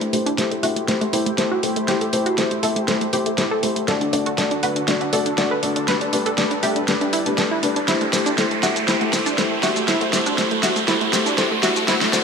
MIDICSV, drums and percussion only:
0, 0, Header, 1, 2, 480
1, 0, Start_track
1, 0, Tempo, 500000
1, 1806, Time_signature, 4, 2, 24, 8
1, 11749, End_track
2, 0, Start_track
2, 0, Title_t, "Drums"
2, 13, Note_on_c, 9, 42, 40
2, 109, Note_off_c, 9, 42, 0
2, 127, Note_on_c, 9, 46, 104
2, 223, Note_off_c, 9, 46, 0
2, 254, Note_on_c, 9, 42, 55
2, 350, Note_off_c, 9, 42, 0
2, 367, Note_on_c, 9, 38, 47
2, 367, Note_on_c, 9, 42, 83
2, 463, Note_off_c, 9, 38, 0
2, 463, Note_off_c, 9, 42, 0
2, 494, Note_on_c, 9, 42, 37
2, 590, Note_off_c, 9, 42, 0
2, 606, Note_on_c, 9, 46, 91
2, 702, Note_off_c, 9, 46, 0
2, 734, Note_on_c, 9, 42, 50
2, 830, Note_off_c, 9, 42, 0
2, 848, Note_on_c, 9, 38, 50
2, 848, Note_on_c, 9, 42, 81
2, 944, Note_off_c, 9, 38, 0
2, 944, Note_off_c, 9, 42, 0
2, 973, Note_on_c, 9, 42, 34
2, 1069, Note_off_c, 9, 42, 0
2, 1086, Note_on_c, 9, 46, 105
2, 1182, Note_off_c, 9, 46, 0
2, 1214, Note_on_c, 9, 42, 54
2, 1310, Note_off_c, 9, 42, 0
2, 1326, Note_on_c, 9, 38, 48
2, 1326, Note_on_c, 9, 42, 79
2, 1422, Note_off_c, 9, 38, 0
2, 1422, Note_off_c, 9, 42, 0
2, 1566, Note_on_c, 9, 46, 86
2, 1662, Note_off_c, 9, 46, 0
2, 1692, Note_on_c, 9, 42, 52
2, 1788, Note_off_c, 9, 42, 0
2, 1805, Note_on_c, 9, 38, 52
2, 1805, Note_on_c, 9, 42, 81
2, 1901, Note_off_c, 9, 38, 0
2, 1901, Note_off_c, 9, 42, 0
2, 1932, Note_on_c, 9, 42, 38
2, 2028, Note_off_c, 9, 42, 0
2, 2044, Note_on_c, 9, 46, 106
2, 2140, Note_off_c, 9, 46, 0
2, 2171, Note_on_c, 9, 42, 51
2, 2267, Note_off_c, 9, 42, 0
2, 2283, Note_on_c, 9, 38, 50
2, 2283, Note_on_c, 9, 42, 73
2, 2379, Note_off_c, 9, 38, 0
2, 2379, Note_off_c, 9, 42, 0
2, 2411, Note_on_c, 9, 42, 37
2, 2507, Note_off_c, 9, 42, 0
2, 2525, Note_on_c, 9, 46, 96
2, 2621, Note_off_c, 9, 46, 0
2, 2652, Note_on_c, 9, 42, 50
2, 2748, Note_off_c, 9, 42, 0
2, 2765, Note_on_c, 9, 38, 55
2, 2765, Note_on_c, 9, 42, 81
2, 2861, Note_off_c, 9, 38, 0
2, 2861, Note_off_c, 9, 42, 0
2, 2892, Note_on_c, 9, 42, 35
2, 2988, Note_off_c, 9, 42, 0
2, 3004, Note_on_c, 9, 46, 104
2, 3100, Note_off_c, 9, 46, 0
2, 3131, Note_on_c, 9, 42, 53
2, 3227, Note_off_c, 9, 42, 0
2, 3244, Note_on_c, 9, 38, 55
2, 3244, Note_on_c, 9, 42, 76
2, 3340, Note_off_c, 9, 38, 0
2, 3340, Note_off_c, 9, 42, 0
2, 3484, Note_on_c, 9, 46, 90
2, 3580, Note_off_c, 9, 46, 0
2, 3612, Note_on_c, 9, 42, 51
2, 3708, Note_off_c, 9, 42, 0
2, 3725, Note_on_c, 9, 38, 56
2, 3725, Note_on_c, 9, 42, 78
2, 3821, Note_off_c, 9, 38, 0
2, 3821, Note_off_c, 9, 42, 0
2, 3852, Note_on_c, 9, 42, 38
2, 3948, Note_off_c, 9, 42, 0
2, 3965, Note_on_c, 9, 46, 111
2, 4061, Note_off_c, 9, 46, 0
2, 4092, Note_on_c, 9, 42, 48
2, 4188, Note_off_c, 9, 42, 0
2, 4205, Note_on_c, 9, 38, 59
2, 4205, Note_on_c, 9, 42, 74
2, 4301, Note_off_c, 9, 38, 0
2, 4301, Note_off_c, 9, 42, 0
2, 4331, Note_on_c, 9, 42, 37
2, 4427, Note_off_c, 9, 42, 0
2, 4444, Note_on_c, 9, 46, 92
2, 4540, Note_off_c, 9, 46, 0
2, 4570, Note_on_c, 9, 42, 49
2, 4666, Note_off_c, 9, 42, 0
2, 4683, Note_on_c, 9, 38, 64
2, 4683, Note_on_c, 9, 42, 80
2, 4779, Note_off_c, 9, 38, 0
2, 4779, Note_off_c, 9, 42, 0
2, 4810, Note_on_c, 9, 42, 34
2, 4906, Note_off_c, 9, 42, 0
2, 4922, Note_on_c, 9, 46, 107
2, 5018, Note_off_c, 9, 46, 0
2, 5049, Note_on_c, 9, 42, 52
2, 5145, Note_off_c, 9, 42, 0
2, 5163, Note_on_c, 9, 38, 61
2, 5163, Note_on_c, 9, 42, 72
2, 5259, Note_off_c, 9, 38, 0
2, 5259, Note_off_c, 9, 42, 0
2, 5403, Note_on_c, 9, 46, 92
2, 5499, Note_off_c, 9, 46, 0
2, 5530, Note_on_c, 9, 42, 52
2, 5626, Note_off_c, 9, 42, 0
2, 5644, Note_on_c, 9, 38, 64
2, 5644, Note_on_c, 9, 42, 76
2, 5740, Note_off_c, 9, 38, 0
2, 5740, Note_off_c, 9, 42, 0
2, 5771, Note_on_c, 9, 42, 38
2, 5867, Note_off_c, 9, 42, 0
2, 5883, Note_on_c, 9, 46, 106
2, 5979, Note_off_c, 9, 46, 0
2, 6010, Note_on_c, 9, 42, 48
2, 6106, Note_off_c, 9, 42, 0
2, 6123, Note_on_c, 9, 38, 70
2, 6123, Note_on_c, 9, 42, 77
2, 6219, Note_off_c, 9, 38, 0
2, 6219, Note_off_c, 9, 42, 0
2, 6250, Note_on_c, 9, 42, 34
2, 6346, Note_off_c, 9, 42, 0
2, 6363, Note_on_c, 9, 46, 97
2, 6459, Note_off_c, 9, 46, 0
2, 6490, Note_on_c, 9, 42, 48
2, 6586, Note_off_c, 9, 42, 0
2, 6604, Note_on_c, 9, 38, 69
2, 6604, Note_on_c, 9, 42, 74
2, 6700, Note_off_c, 9, 38, 0
2, 6700, Note_off_c, 9, 42, 0
2, 6732, Note_on_c, 9, 42, 34
2, 6828, Note_off_c, 9, 42, 0
2, 6844, Note_on_c, 9, 46, 109
2, 6940, Note_off_c, 9, 46, 0
2, 6971, Note_on_c, 9, 42, 52
2, 7067, Note_off_c, 9, 42, 0
2, 7084, Note_on_c, 9, 38, 69
2, 7084, Note_on_c, 9, 42, 71
2, 7180, Note_off_c, 9, 38, 0
2, 7180, Note_off_c, 9, 42, 0
2, 7324, Note_on_c, 9, 46, 93
2, 7420, Note_off_c, 9, 46, 0
2, 7452, Note_on_c, 9, 42, 49
2, 7548, Note_off_c, 9, 42, 0
2, 7564, Note_on_c, 9, 38, 71
2, 7564, Note_on_c, 9, 42, 76
2, 7568, Note_on_c, 9, 82, 33
2, 7660, Note_off_c, 9, 38, 0
2, 7660, Note_off_c, 9, 42, 0
2, 7664, Note_off_c, 9, 82, 0
2, 7691, Note_on_c, 9, 42, 38
2, 7787, Note_off_c, 9, 42, 0
2, 7804, Note_on_c, 9, 38, 78
2, 7804, Note_on_c, 9, 46, 111
2, 7808, Note_on_c, 9, 82, 80
2, 7900, Note_off_c, 9, 38, 0
2, 7900, Note_off_c, 9, 46, 0
2, 7904, Note_off_c, 9, 82, 0
2, 7931, Note_on_c, 9, 42, 49
2, 7935, Note_on_c, 9, 82, 45
2, 8027, Note_off_c, 9, 42, 0
2, 8031, Note_off_c, 9, 82, 0
2, 8044, Note_on_c, 9, 38, 76
2, 8044, Note_on_c, 9, 42, 75
2, 8048, Note_on_c, 9, 82, 34
2, 8140, Note_off_c, 9, 38, 0
2, 8140, Note_off_c, 9, 42, 0
2, 8144, Note_off_c, 9, 82, 0
2, 8171, Note_on_c, 9, 42, 37
2, 8267, Note_off_c, 9, 42, 0
2, 8284, Note_on_c, 9, 38, 76
2, 8284, Note_on_c, 9, 46, 92
2, 8288, Note_on_c, 9, 82, 84
2, 8380, Note_off_c, 9, 38, 0
2, 8380, Note_off_c, 9, 46, 0
2, 8384, Note_off_c, 9, 82, 0
2, 8411, Note_on_c, 9, 42, 50
2, 8415, Note_on_c, 9, 82, 43
2, 8507, Note_off_c, 9, 42, 0
2, 8511, Note_off_c, 9, 82, 0
2, 8524, Note_on_c, 9, 38, 81
2, 8524, Note_on_c, 9, 42, 77
2, 8528, Note_on_c, 9, 82, 36
2, 8620, Note_off_c, 9, 38, 0
2, 8620, Note_off_c, 9, 42, 0
2, 8624, Note_off_c, 9, 82, 0
2, 8651, Note_on_c, 9, 42, 33
2, 8747, Note_off_c, 9, 42, 0
2, 8763, Note_on_c, 9, 38, 77
2, 8763, Note_on_c, 9, 46, 107
2, 8767, Note_on_c, 9, 82, 78
2, 8859, Note_off_c, 9, 38, 0
2, 8859, Note_off_c, 9, 46, 0
2, 8863, Note_off_c, 9, 82, 0
2, 8892, Note_on_c, 9, 42, 51
2, 8896, Note_on_c, 9, 82, 47
2, 8988, Note_off_c, 9, 42, 0
2, 8992, Note_off_c, 9, 82, 0
2, 9005, Note_on_c, 9, 38, 75
2, 9005, Note_on_c, 9, 42, 71
2, 9009, Note_on_c, 9, 82, 33
2, 9101, Note_off_c, 9, 38, 0
2, 9101, Note_off_c, 9, 42, 0
2, 9105, Note_off_c, 9, 82, 0
2, 9244, Note_on_c, 9, 38, 81
2, 9244, Note_on_c, 9, 46, 89
2, 9248, Note_on_c, 9, 82, 76
2, 9340, Note_off_c, 9, 38, 0
2, 9340, Note_off_c, 9, 46, 0
2, 9344, Note_off_c, 9, 82, 0
2, 9371, Note_on_c, 9, 42, 52
2, 9375, Note_on_c, 9, 82, 44
2, 9467, Note_off_c, 9, 42, 0
2, 9471, Note_off_c, 9, 82, 0
2, 9484, Note_on_c, 9, 38, 82
2, 9484, Note_on_c, 9, 42, 79
2, 9488, Note_on_c, 9, 82, 35
2, 9580, Note_off_c, 9, 38, 0
2, 9580, Note_off_c, 9, 42, 0
2, 9584, Note_off_c, 9, 82, 0
2, 9611, Note_on_c, 9, 42, 39
2, 9707, Note_off_c, 9, 42, 0
2, 9725, Note_on_c, 9, 38, 85
2, 9725, Note_on_c, 9, 46, 102
2, 9729, Note_on_c, 9, 82, 83
2, 9821, Note_off_c, 9, 38, 0
2, 9821, Note_off_c, 9, 46, 0
2, 9825, Note_off_c, 9, 82, 0
2, 9852, Note_on_c, 9, 42, 52
2, 9856, Note_on_c, 9, 82, 45
2, 9948, Note_off_c, 9, 42, 0
2, 9952, Note_off_c, 9, 82, 0
2, 9965, Note_on_c, 9, 38, 83
2, 9965, Note_on_c, 9, 42, 76
2, 9969, Note_on_c, 9, 82, 35
2, 10061, Note_off_c, 9, 38, 0
2, 10061, Note_off_c, 9, 42, 0
2, 10065, Note_off_c, 9, 82, 0
2, 10091, Note_on_c, 9, 42, 38
2, 10187, Note_off_c, 9, 42, 0
2, 10204, Note_on_c, 9, 38, 90
2, 10204, Note_on_c, 9, 46, 87
2, 10208, Note_on_c, 9, 82, 85
2, 10300, Note_off_c, 9, 38, 0
2, 10300, Note_off_c, 9, 46, 0
2, 10304, Note_off_c, 9, 82, 0
2, 10331, Note_on_c, 9, 42, 50
2, 10335, Note_on_c, 9, 82, 47
2, 10427, Note_off_c, 9, 42, 0
2, 10431, Note_off_c, 9, 82, 0
2, 10444, Note_on_c, 9, 38, 90
2, 10444, Note_on_c, 9, 42, 80
2, 10448, Note_on_c, 9, 82, 34
2, 10540, Note_off_c, 9, 38, 0
2, 10540, Note_off_c, 9, 42, 0
2, 10544, Note_off_c, 9, 82, 0
2, 10571, Note_on_c, 9, 42, 35
2, 10667, Note_off_c, 9, 42, 0
2, 10684, Note_on_c, 9, 38, 94
2, 10684, Note_on_c, 9, 46, 102
2, 10688, Note_on_c, 9, 82, 81
2, 10780, Note_off_c, 9, 38, 0
2, 10780, Note_off_c, 9, 46, 0
2, 10784, Note_off_c, 9, 82, 0
2, 10811, Note_on_c, 9, 42, 51
2, 10815, Note_on_c, 9, 82, 50
2, 10907, Note_off_c, 9, 42, 0
2, 10911, Note_off_c, 9, 82, 0
2, 10924, Note_on_c, 9, 38, 86
2, 10924, Note_on_c, 9, 42, 81
2, 10928, Note_on_c, 9, 82, 34
2, 11020, Note_off_c, 9, 38, 0
2, 11020, Note_off_c, 9, 42, 0
2, 11024, Note_off_c, 9, 82, 0
2, 11164, Note_on_c, 9, 38, 90
2, 11164, Note_on_c, 9, 46, 89
2, 11168, Note_on_c, 9, 82, 79
2, 11260, Note_off_c, 9, 38, 0
2, 11260, Note_off_c, 9, 46, 0
2, 11264, Note_off_c, 9, 82, 0
2, 11291, Note_on_c, 9, 42, 54
2, 11295, Note_on_c, 9, 82, 44
2, 11387, Note_off_c, 9, 42, 0
2, 11391, Note_off_c, 9, 82, 0
2, 11405, Note_on_c, 9, 38, 95
2, 11405, Note_on_c, 9, 42, 84
2, 11409, Note_on_c, 9, 82, 36
2, 11501, Note_off_c, 9, 38, 0
2, 11501, Note_off_c, 9, 42, 0
2, 11505, Note_off_c, 9, 82, 0
2, 11532, Note_on_c, 9, 38, 90
2, 11532, Note_on_c, 9, 42, 42
2, 11628, Note_off_c, 9, 38, 0
2, 11628, Note_off_c, 9, 42, 0
2, 11646, Note_on_c, 9, 38, 100
2, 11646, Note_on_c, 9, 46, 102
2, 11650, Note_on_c, 9, 82, 81
2, 11742, Note_off_c, 9, 38, 0
2, 11742, Note_off_c, 9, 46, 0
2, 11746, Note_off_c, 9, 82, 0
2, 11749, End_track
0, 0, End_of_file